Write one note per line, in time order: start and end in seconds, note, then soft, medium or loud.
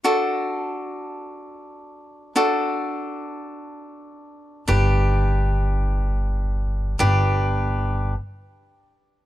0.04 2.33 D4 medium
0.04 2.32 F#4 medium
0.04 2.33 A4 medium
2.36 4.64 D4 medium
2.36 4.64 F#4 medium
2.36 4.64 A4 medium
4.68 6.96 G1 medium
4.68 6.96 D4 medium
4.68 6.96 G4 medium
4.68 6.96 B4 medium
6.99 8.13 G1 medium
6.99 8.13 D4 medium
6.99 8.13 G4 medium
6.99 8.13 B4 medium